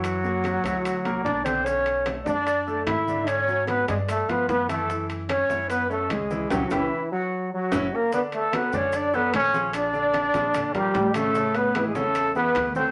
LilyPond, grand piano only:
\new Staff \with { instrumentName = "Grand piano" } { \time 4/4 \key fis \minor \tempo 4 = 149 <e e'>8 <ais ais'>4 <e' e''>4 <ais ais'>4 <d d'>8 | <d cis'>4 <a a'>8 <d' d''>4 <a a'>4 <d d'>8~ | <d d'>8 <fis fis'>4 <d' d''>4 <eis eis'>4 <e e'>8 | <e e'>4 <cis' cis''>8 <e' e''>4 <cis' cis''>4 <e e'>8 |
<cis' e' g'>8 <cis' e' g'>8 r2 <cis' e' fis'>8 r8 | \key b \minor <d d' d''>4 <fis fis' a'>8 <d d' d''>4 <fis fis' a'>4 <eis eis' gis'>8~ | <eis eis' gis'>8 <d d' d''>4 <eis eis' gis'>8 <d d' d''>8 <eis eis' ais'>4 <cis cis' cis''>8 | <cis cis' cis''>4 <e e' gis'>8 <cis cis' cis''>4 <e e' gis'>4 <fis fis' a'>8 | }